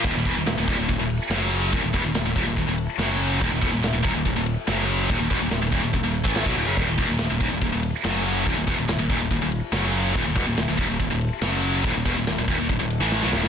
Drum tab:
CC |x---------------|----------------|x---------------|----------------|
RD |--x-x-x-x-x-x-x-|x-x-x-x-x-x-x-x-|--x-x-x-x-x-x-x-|x-x-x-x-x-x-x-x-|
SD |----o-------o---|----o-------o---|----o-------o---|----o-------o---|
BD |o-o---o-o-------|o-o---o-o-------|o-o---o-o-------|o-o---o-o--o-o--|

CC |x---------------|----------------|x---------------|----------------|
RD |--x-x-x-x-x-x-x-|x-x-x-x-x-x-x-x-|--x-x-x-x-x-x-x-|x-x-x-x-x-x-----|
SD |----o-------o---|----o-------o---|----o-------o---|----o-------oooo|
BD |o-o---o-o-------|o-o---o-o-------|o-o---o-o-------|o-o---o-o-------|